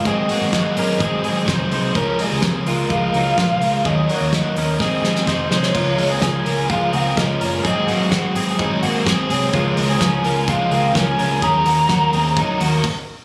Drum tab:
CC |----------------|----------------|----------------|x---------------|
HH |x-o-x-o-x-o-x-o-|x-o-x-o-x-o-x-o-|x-o-x-o---------|--o-x-o-x-o-x-o-|
SD |----o-------o---|----o-------o---|----o---o-ooo-oo|----o-------o---|
BD |o---o---o---o---|o---o---o---o---|o---o---o---o---|o---o---o---o---|

CC |----------------|----------------|------------x---|
HH |x-o-x-o-x-o-x-o-|x-o-x-o-x-o-x-o-|x-o-x-o-x-o-----|
SD |----o-------o---|----o-------o---|----o-----------|
BD |o---o---o---o---|o---o---o---o---|o---o---o---o---|